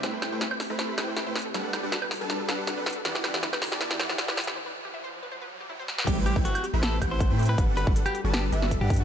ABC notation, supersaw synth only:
X:1
M:4/4
L:1/16
Q:1/4=159
K:Ador
V:1 name="Supersaw synth"
[A,EBcg]3 [A,EBcg] z3 [A,EBcb]3 [A,EBcg]3 [A,EBcg] z2 | [G,DABf]3 [G,DABf] z3 [G,DABa]3 [G,DABf]3 [G,DABf] z2 | [E,EGdf]3 [E,EGdf] z3 [E,EGda]3 [E,EGdf]3 [E,EGdf] z2 | z16 |
[A,EBcg]3 [A,EBcg] z3 [A,EBcb]3 [A,EBcf]3 [A,EBcg]3 | [G,DABf]3 [G,DABf] z3 [G,DABa]3 [G,DABe]3 [G,DABf]3 |]